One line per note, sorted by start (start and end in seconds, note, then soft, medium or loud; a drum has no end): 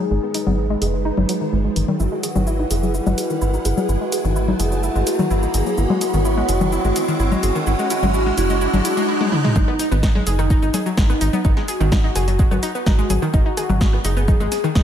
0.00 1.96 G#3 medium
0.00 1.96 D#4 medium
0.00 0.25 G#4 loud
0.00 1.96 G#4 medium
0.00 riser medium
0.11 0.19 G#1 medium
0.11 0.17 G#3 medium
0.23 0.29 B3 medium
0.34 0.44 D#4 medium
0.34 1.91 B4 loud
0.34 open hi-hat loud
0.47 0.76 G#1 medium
0.47 0.53 B3 medium
0.47 low conga medium
0.58 0.65 D#4 medium
0.70 0.79 G#3 loud
0.82 1.11 F#1 loud
0.82 0.91 G#4 medium
0.82 open hi-hat medium
0.94 1.00 G#3 medium
1.05 1.12 D#4 loud
1.17 1.25 G#1 medium
1.17 1.24 D#4 medium
1.17 low conga medium
1.29 1.35 F#3 medium
1.29 open hi-hat loud
1.41 1.45 D#3 medium
1.53 1.69 G#1 medium
1.53 1.56 G#3 medium
1.65 1.74 G#3 medium
1.76 1.84 G#1 medium
1.76 1.80 D#3 medium
1.76 open hi-hat medium
1.88 1.97 D#3 loud
1.88 low conga medium
2.00 2.08 G#1 loud
2.00 2.06 E4 medium
2.00 9.05 E4 medium
2.00 2.62 F#4 medium
2.00 5.74 B4 medium
2.00 9.04 F#5 medium
2.00 shaker soft
2.12 2.21 G#3 medium
2.23 2.33 G#4 medium
2.23 open hi-hat loud
2.23 shaker medium
2.36 2.65 G#1 loud
2.36 2.42 D#3 medium
2.36 low conga loud
2.36 shaker soft
2.47 2.54 E4 medium
2.47 shaker soft
2.59 2.65 D#4 medium
2.71 3.00 F#1 loud
2.71 2.93 G#4 medium
2.71 2.80 G#4 medium
2.71 open hi-hat medium
2.71 shaker medium
2.83 2.89 F#3 medium
2.83 shaker soft
2.94 3.01 E4 medium
2.94 3.56 F#4 medium
2.94 shaker soft
3.06 3.14 G#1 medium
3.06 3.16 G#3 medium
3.06 low conga medium
3.06 shaker soft
3.18 3.28 G#4 medium
3.18 open hi-hat loud
3.18 shaker medium
3.30 3.36 D#3 medium
3.30 shaker soft
3.41 3.58 G#1 medium
3.41 3.48 E4 medium
3.41 shaker soft
3.54 3.60 D#4 medium
3.54 shaker soft
3.65 3.73 G#1 medium
3.65 3.87 G#4 medium
3.65 3.75 G#4 medium
3.65 open hi-hat medium
3.65 shaker medium
3.77 3.83 F#3 medium
3.77 low conga medium
3.77 shaker soft
3.89 3.97 G#1 medium
3.89 3.95 E4 medium
3.89 4.51 F#4 loud
3.89 shaker soft
4.01 4.10 G#3 loud
4.12 4.22 G#4 medium
4.12 open hi-hat loud
4.12 shaker medium
4.25 4.54 G#1 loud
4.25 4.31 D#3 medium
4.25 shaker soft
4.36 4.43 E4 medium
4.36 shaker soft
4.48 4.54 D#4 medium
4.48 low conga medium
4.60 4.89 F#1 loud
4.60 4.69 G#4 medium
4.60 4.82 G#4 medium
4.60 open hi-hat medium
4.60 shaker medium
4.72 4.78 F#3 medium
4.72 shaker soft
4.83 4.90 E4 medium
4.83 5.45 F#4 loud
4.83 shaker soft
4.95 5.03 G#1 medium
4.95 5.05 G#3 loud
4.95 shaker soft
5.07 5.17 G#4 medium
5.07 open hi-hat loud
5.07 shaker medium
5.19 5.25 D#3 loud
5.19 low conga loud
5.19 shaker soft
5.30 5.47 G#1 medium
5.30 5.37 E4 loud
5.30 shaker soft
5.43 5.49 D#4 medium
5.43 shaker soft
5.54 5.62 G#1 medium
5.54 5.76 G#4 medium
5.54 5.64 G#4 medium
5.54 open hi-hat medium
5.54 shaker medium
5.66 5.72 F#3 medium
5.66 shaker soft
5.78 5.86 G#1 loud
5.78 5.84 E4 medium
5.78 6.23 F#4 loud
5.78 9.05 C#5 medium
5.78 shaker soft
5.90 5.99 G#3 loud
5.90 low conga medium
6.01 6.11 G#4 medium
6.01 open hi-hat loud
6.01 shaker medium
6.14 6.43 G#1 loud
6.14 6.20 D#3 loud
6.14 shaker soft
6.25 6.32 E4 medium
6.25 6.70 F#4 loud
6.25 shaker soft
6.37 6.46 G#3 loud
6.49 6.78 F#1 loud
6.49 6.58 G#4 medium
6.49 open hi-hat medium
6.49 shaker medium
6.61 6.67 D#3 medium
6.61 low conga loud
6.61 shaker soft
6.72 6.79 E4 medium
6.72 7.18 F#4 loud
6.72 shaker soft
6.84 6.92 G#1 medium
6.84 6.94 G#3 loud
6.84 shaker soft
6.96 7.06 G#4 medium
6.96 open hi-hat loud
6.96 shaker medium
7.08 7.14 D#3 loud
7.08 shaker soft
7.19 7.36 G#1 medium
7.19 7.26 E4 medium
7.19 7.65 F#4 loud
7.19 shaker soft
7.32 7.41 G#3 loud
7.32 low conga medium
7.32 shaker soft
7.43 7.51 G#1 medium
7.43 7.53 G#4 medium
7.43 open hi-hat medium
7.43 shaker medium
7.55 7.61 D#3 loud
7.55 shaker soft
7.67 7.75 G#1 loud
7.67 7.73 E4 medium
7.67 7.89 F#4 loud
7.67 shaker soft
7.79 7.88 G#3 loud
7.79 shaker soft
7.90 7.97 E4 medium
7.90 8.12 F#4 loud
7.90 open hi-hat loud
7.90 shaker medium
8.03 8.32 G#1 loud
8.03 8.12 G#3 loud
8.03 low conga medium
8.03 shaker soft
8.14 8.21 E4 medium
8.14 8.36 F#4 loud
8.14 shaker soft
8.26 8.35 G#3 loud
8.38 8.67 F#1 loud
8.38 8.44 E4 medium
8.38 8.59 F#4 loud
8.38 open hi-hat medium
8.38 shaker medium
8.50 8.59 G#3 loud
8.50 shaker soft
8.61 8.68 E4 medium
8.61 8.83 F#4 loud
8.61 swell medium
8.61 shaker soft
8.73 8.81 G#1 medium
8.73 8.83 G#3 loud
8.73 low conga medium
8.73 shaker soft
8.85 8.91 E4 medium
8.85 9.07 F#4 loud
8.85 open hi-hat loud
8.85 shaker medium
8.97 9.06 G#3 loud
8.97 shaker soft
9.08 9.15 E4 medium
9.21 9.30 G#3 loud
9.21 high tom medium
9.32 9.39 E4 medium
9.32 mid tom medium
9.44 9.53 G#3 loud
9.44 mid tom medium
9.56 9.64 G#1 loud
9.56 9.62 G#3 medium
9.56 10.17 D#4 loud
9.56 9.62 G#4 medium
9.56 kick loud
9.56 low conga medium
9.56 shaker soft
9.68 9.74 B3 medium
9.68 9.74 B4 medium
9.68 cross-stick soft
9.79 9.89 D#4 loud
9.79 9.89 D#5 medium
9.79 open hi-hat loud
9.79 shaker medium
9.91 10.21 G#1 loud
9.91 9.98 B3 medium
9.91 9.98 B4 medium
9.91 shaker soft
10.03 10.09 D#4 medium
10.03 10.09 D#5 medium
10.03 kick loud
10.03 cross-stick medium
10.03 snare loud
10.03 shaker soft
10.15 10.24 G#3 loud
10.15 10.24 G#4 medium
10.15 low conga medium
10.27 10.56 F#1 loud
10.27 10.88 D#4 loud
10.27 10.36 G#4 medium
10.27 10.36 G#5 medium
10.27 open hi-hat loud
10.27 shaker medium
10.39 10.45 D#3 loud
10.39 10.45 D#4 medium
10.39 cross-stick soft
10.39 shaker soft
10.50 10.57 D#4 loud
10.50 10.57 D#5 medium
10.50 kick loud
10.50 shaker soft
10.62 10.70 G#1 medium
10.62 10.68 D#4 medium
10.62 10.68 D#5 medium
10.62 shaker soft
10.74 10.84 G#4 medium
10.74 10.84 G#5 medium
10.74 cross-stick medium
10.74 snare soft
10.74 open hi-hat loud
10.74 low conga medium
10.74 shaker medium
10.86 10.92 F#3 medium
10.86 10.92 F#4 medium
10.86 shaker soft
10.97 11.14 G#1 medium
10.97 11.04 G#3 medium
10.97 11.59 D#4 loud
10.97 11.04 G#4 medium
10.97 kick loud
10.97 snare loud
10.97 shaker soft
11.10 11.16 B3 medium
11.10 11.16 B4 medium
11.10 cross-stick soft
11.10 shaker soft
11.21 11.29 G#1 medium
11.21 11.31 D#4 loud
11.21 11.31 D#5 medium
11.21 open hi-hat loud
11.21 shaker medium
11.33 11.39 B3 medium
11.33 11.39 B4 medium
11.33 low conga medium
11.33 shaker soft
11.45 11.53 G#1 loud
11.45 11.51 D#4 medium
11.45 11.51 D#5 medium
11.45 kick loud
11.45 cross-stick soft
11.45 shaker soft
11.57 11.66 G#3 loud
11.57 11.66 G#4 medium
11.57 snare soft
11.68 13.25 F#4 loud
11.68 11.78 G#4 medium
11.68 11.78 G#5 medium
11.68 open hi-hat loud
11.68 shaker medium
11.80 12.10 G#1 loud
11.80 11.87 D#3 loud
11.80 11.87 D#4 medium
11.80 cross-stick medium
11.80 shaker soft
11.92 11.98 D#4 loud
11.92 11.98 D#5 medium
11.92 kick loud
11.92 snare loud
11.92 low conga medium
11.92 shaker soft
12.04 12.10 D#4 medium
12.04 12.10 D#5 medium
12.15 12.45 F#1 loud
12.15 12.25 G#4 medium
12.15 12.25 G#5 medium
12.15 cross-stick medium
12.15 open hi-hat loud
12.15 shaker medium
12.28 12.34 F#3 medium
12.28 12.34 F#4 medium
12.28 open hi-hat medium
12.28 shaker soft
12.39 12.46 G#3 medium
12.39 12.46 G#4 medium
12.39 kick loud
12.39 shaker soft
12.51 12.59 G#1 medium
12.51 12.57 B3 medium
12.51 12.57 B4 medium
12.51 cross-stick medium
12.51 low conga medium
12.51 shaker soft
12.63 12.72 D#4 loud
12.63 12.72 D#5 medium
12.63 open hi-hat loud
12.63 shaker medium
12.75 12.81 B3 medium
12.75 12.81 B4 medium
12.75 shaker soft
12.86 13.03 G#1 medium
12.86 12.93 D#4 medium
12.86 12.93 D#5 medium
12.86 kick loud
12.86 cross-stick medium
12.86 snare loud
12.86 shaker soft
12.99 13.08 G#3 loud
12.99 13.08 G#4 medium
12.99 shaker soft
13.10 13.18 G#1 medium
13.10 13.20 G#4 medium
13.10 13.20 G#5 medium
13.10 open hi-hat loud
13.10 low conga medium
13.10 shaker medium
13.22 13.28 D#3 loud
13.22 13.28 D#4 medium
13.22 cross-stick medium
13.22 shaker soft
13.34 13.42 G#1 medium
13.34 13.40 D#4 loud
13.34 13.95 F#4 loud
13.34 13.40 D#5 medium
13.34 kick loud
13.34 shaker soft
13.46 13.52 D#4 medium
13.46 13.52 D#5 medium
13.57 13.67 G#4 medium
13.57 13.67 G#5 medium
13.57 cross-stick medium
13.57 open hi-hat loud
13.57 shaker medium
13.69 13.99 G#1 loud
13.69 13.76 F#3 medium
13.69 13.76 F#4 medium
13.69 low conga medium
13.69 shaker soft
13.81 13.87 G#3 medium
13.81 13.87 G#4 medium
13.81 kick loud
13.81 snare loud
13.81 shaker soft
13.93 13.99 B3 medium
13.93 13.99 B4 medium
13.93 cross-stick medium
14.05 14.34 F#1 loud
14.05 14.14 D#4 loud
14.05 14.66 G#4 loud
14.05 14.14 D#5 medium
14.05 open hi-hat loud
14.05 shaker medium
14.17 14.23 B3 medium
14.17 14.23 B4 medium
14.17 shaker soft
14.28 14.35 D#4 medium
14.28 14.35 D#5 medium
14.28 kick loud
14.28 cross-stick medium
14.28 low conga medium
14.28 shaker soft
14.40 14.48 G#1 medium
14.40 14.49 G#3 loud
14.40 14.49 G#4 medium
14.40 shaker soft
14.52 14.61 G#4 medium
14.52 14.61 G#5 medium
14.52 snare soft
14.52 open hi-hat loud
14.52 shaker medium
14.64 14.70 D#3 loud
14.64 14.70 D#4 medium
14.64 cross-stick medium
14.64 shaker soft
14.75 14.83 G#1 medium
14.75 14.82 D#4 loud
14.75 14.83 G#4 loud
14.75 14.82 D#5 medium
14.75 kick loud
14.75 snare loud
14.75 shaker soft